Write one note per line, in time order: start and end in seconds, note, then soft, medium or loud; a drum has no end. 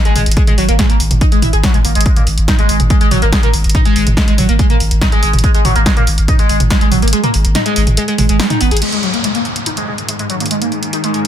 0.05 0.13 G#3 loud
0.05 closed hi-hat medium
0.16 0.26 G#1 loud
0.16 0.21 G#3 loud
0.16 mid tom medium
0.16 open hi-hat loud
0.26 0.37 G#1 medium
0.26 closed hi-hat medium
0.31 closed hi-hat medium
0.37 0.42 G#3 medium
0.37 kick loud
0.37 closed hi-hat medium
0.47 0.53 G#3 loud
0.47 closed hi-hat medium
0.47 mid tom medium
0.58 0.68 G#1 medium
0.58 0.63 F#3 loud
0.58 open hi-hat loud
0.69 0.79 G#1 medium
0.69 0.72 A#3 medium
0.69 closed hi-hat soft
0.79 0.84 G#3 medium
0.79 kick loud
0.79 snare loud
0.79 closed hi-hat medium
0.79 mid tom medium
0.90 0.95 A#3 medium
0.90 closed hi-hat medium
1.00 1.10 G#1 loud
1.00 open hi-hat loud
1.11 1.21 G#1 medium
1.11 closed hi-hat medium
1.11 mid tom medium
1.21 1.24 D#4 medium
1.21 kick loud
1.21 closed hi-hat medium
1.32 1.40 G#3 loud
1.32 closed hi-hat medium
1.42 1.53 G#1 loud
1.42 1.48 E4 medium
1.42 mid tom medium
1.42 open hi-hat loud
1.53 1.63 G#1 medium
1.53 1.56 G#4 medium
1.53 closed hi-hat medium
1.63 1.71 F#3 medium
1.63 kick loud
1.63 snare loud
1.63 closed hi-hat medium
1.74 1.77 G#3 medium
1.74 closed hi-hat medium
1.74 mid tom medium
1.85 1.95 G#1 loud
1.85 1.90 A#3 medium
1.85 open hi-hat loud
1.95 2.06 G#1 medium
1.95 2.03 G#3 medium
1.95 closed hi-hat medium
2.01 closed hi-hat medium
2.06 2.11 G#3 medium
2.06 kick loud
2.06 closed hi-hat medium
2.16 2.22 A#3 medium
2.16 closed hi-hat medium
2.16 mid tom medium
2.27 2.37 G#1 medium
2.27 open hi-hat loud
2.38 2.48 G#1 medium
2.38 closed hi-hat medium
2.48 2.51 D#4 medium
2.48 kick loud
2.48 snare loud
2.48 closed hi-hat medium
2.48 mid tom medium
2.59 2.66 G#3 loud
2.59 closed hi-hat medium
2.69 2.79 G#1 loud
2.69 2.74 G#3 loud
2.69 open hi-hat loud
2.80 2.90 G#1 medium
2.80 closed hi-hat medium
2.80 mid tom medium
2.90 2.95 G#3 medium
2.90 kick loud
2.90 closed hi-hat medium
3.01 3.06 G#3 loud
3.01 closed hi-hat medium
3.11 3.22 G#1 loud
3.11 3.17 F#3 loud
3.11 mid tom medium
3.11 open hi-hat loud
3.22 3.32 G#1 medium
3.22 3.25 A#3 medium
3.22 closed hi-hat medium
3.32 3.38 G#3 medium
3.32 kick loud
3.32 snare loud
3.32 closed hi-hat medium
3.43 3.48 A#3 medium
3.43 closed hi-hat soft
3.43 mid tom medium
3.54 3.64 G#1 loud
3.54 open hi-hat loud
3.64 3.75 G#1 medium
3.64 closed hi-hat soft
3.69 closed hi-hat medium
3.75 3.78 D#4 medium
3.75 kick loud
3.75 closed hi-hat medium
3.75 mid tom medium
3.85 3.93 G#3 loud
3.85 closed hi-hat medium
3.96 4.06 G#1 loud
3.96 4.01 G#3 loud
3.96 open hi-hat loud
4.07 4.17 G#1 medium
4.07 closed hi-hat soft
4.07 mid tom medium
4.17 4.22 G#3 medium
4.17 kick loud
4.17 snare loud
4.17 closed hi-hat medium
4.28 4.33 G#3 loud
4.28 closed hi-hat medium
4.38 4.48 G#1 loud
4.38 4.43 F#3 loud
4.38 mid tom medium
4.38 open hi-hat loud
4.49 4.59 G#1 medium
4.49 4.52 A#3 medium
4.49 closed hi-hat medium
4.59 4.65 G#3 medium
4.59 kick loud
4.59 closed hi-hat medium
4.70 4.75 A#3 medium
4.70 closed hi-hat soft
4.70 mid tom medium
4.80 4.90 G#1 medium
4.80 open hi-hat loud
4.91 5.01 G#1 medium
4.91 closed hi-hat medium
5.01 5.05 D#4 medium
5.01 kick loud
5.01 snare loud
5.01 closed hi-hat medium
5.01 mid tom medium
5.12 5.20 G#3 loud
5.12 closed hi-hat soft
5.23 5.33 G#1 loud
5.23 5.28 G#3 loud
5.23 open hi-hat loud
5.33 5.44 G#1 medium
5.33 closed hi-hat soft
5.33 mid tom medium
5.39 closed hi-hat medium
5.44 5.49 G#3 medium
5.44 kick loud
5.44 closed hi-hat medium
5.55 5.60 G#3 loud
5.55 closed hi-hat medium
5.65 5.75 G#1 medium
5.65 5.70 F#3 loud
5.65 mid tom medium
5.65 open hi-hat loud
5.76 5.86 G#1 medium
5.76 5.79 A#3 medium
5.76 closed hi-hat medium
5.86 5.91 G#3 medium
5.86 kick loud
5.86 snare loud
5.86 closed hi-hat medium
5.97 6.02 A#3 medium
5.97 closed hi-hat medium
5.97 mid tom medium
6.07 6.17 G#1 loud
6.07 open hi-hat loud
6.18 6.28 G#1 medium
6.18 closed hi-hat medium
6.28 6.31 D#4 medium
6.28 kick loud
6.28 closed hi-hat medium
6.28 mid tom medium
6.39 6.47 G#3 loud
6.39 closed hi-hat medium
6.49 6.60 G#1 medium
6.49 6.55 G#3 loud
6.49 open hi-hat loud
6.60 6.70 G#1 medium
6.60 closed hi-hat medium
6.60 mid tom medium
6.70 6.76 G#3 medium
6.70 kick loud
6.70 snare loud
6.70 closed hi-hat medium
6.81 6.86 G#3 loud
6.81 closed hi-hat medium
6.92 7.02 G#1 loud
6.92 6.97 F#3 loud
6.92 mid tom medium
6.92 open hi-hat loud
7.02 7.13 G#1 medium
7.02 7.06 A#3 medium
7.02 closed hi-hat soft
7.08 closed hi-hat medium
7.13 7.18 G#3 medium
7.13 closed hi-hat medium
7.24 7.29 A#3 medium
7.24 closed hi-hat medium
7.24 mid tom medium
7.34 7.44 G#1 loud
7.34 open hi-hat loud
7.45 7.55 G#1 medium
7.45 closed hi-hat medium
7.55 7.58 D#4 medium
7.55 snare loud
7.55 closed hi-hat medium
7.55 mid tom medium
7.66 7.73 G#3 loud
7.66 closed hi-hat medium
7.76 7.86 G#1 loud
7.76 7.81 G#3 loud
7.76 open hi-hat loud
7.87 7.97 G#1 medium
7.87 closed hi-hat medium
7.87 mid tom medium
7.97 8.03 G#3 medium
7.97 closed hi-hat medium
8.08 8.13 G#3 loud
8.08 closed hi-hat medium
8.18 8.29 G#1 loud
8.18 8.24 G#3 medium
8.18 mid tom medium
8.18 open hi-hat loud
8.29 8.39 G#1 medium
8.29 8.37 G#3 medium
8.29 closed hi-hat medium
8.40 8.45 G#3 medium
8.40 snare loud
8.40 open hi-hat medium
8.50 8.58 D#4 medium
8.50 snare soft
8.50 closed hi-hat medium
8.50 mid tom medium
8.61 8.71 G#1 loud
8.61 8.66 B3 loud
8.61 open hi-hat loud
8.71 8.82 G#1 medium
8.71 8.77 G#4 medium
8.71 closed hi-hat medium
8.77 closed hi-hat medium
8.82 11.27 G#2 medium
8.82 11.27 D#3 medium
8.82 8.87 G#3 medium
8.82 closed hi-hat medium
8.82 crash medium
8.82 downlifter medium
8.93 8.98 G#3 loud
8.93 closed hi-hat medium
9.03 9.08 F#3 loud
9.03 closed hi-hat soft
9.14 9.17 A#3 medium
9.14 closed hi-hat soft
9.24 9.29 G#3 medium
9.24 closed hi-hat medium
9.35 9.40 A#3 medium
9.35 closed hi-hat medium
9.45 closed hi-hat soft
9.56 closed hi-hat medium
9.66 9.70 D#4 medium
9.66 closed hi-hat medium
9.77 9.85 G#3 loud
9.77 closed hi-hat medium
9.87 9.93 G#3 loud
9.98 closed hi-hat medium
10.09 10.14 G#3 medium
10.09 closed hi-hat medium
10.19 10.24 G#3 loud
10.19 closed hi-hat medium
10.30 10.35 F#3 loud
10.30 closed hi-hat medium
10.40 10.44 A#3 medium
10.40 closed hi-hat soft
10.46 closed hi-hat medium
10.51 10.56 G#3 medium
10.51 closed hi-hat medium
10.62 10.67 A#3 medium
10.62 closed hi-hat medium
10.72 closed hi-hat soft
10.83 closed hi-hat medium
10.93 10.96 D#4 medium
10.93 closed hi-hat medium
11.04 11.11 G#3 loud
11.04 closed hi-hat medium
11.14 11.19 G#3 loud
11.14 closed hi-hat soft